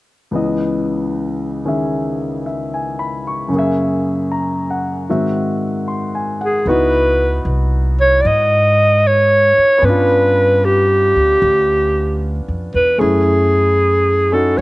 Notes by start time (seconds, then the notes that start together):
0.31 C#2 C#3 E3 B3
0.36 D#5
1.65 D#3 C#4 G#4 E5
2.46 E5
2.74 G#5
2.99 B5
3.27 C#6
3.48 F#2 C#3
3.53 A#3 G#4
3.59 E5
4.32 A#5
4.70 F#5
5.09 G#2 D#3 C4 F#4 E5
5.88 C6
6.15 G#5
6.41 G#4 F#5
6.66 C#2 B3 D#4 E4 F#4 B4
7.45 C2
8.01 C#5
8.21 G#2 D5
8.27 D#5
9.07 C#5
9.58 muted upright bass stroke
9.78 B3 C#4
9.82 G2 D4 B4
9.89 F4
10.65 G4
11.16 D2
11.42 D2
12.48 F2
12.74 E2 B4
12.98 F#2 A3 C#4 E4 G#4
14.32 C#4 D#4 F#4 A4
14.58 C#5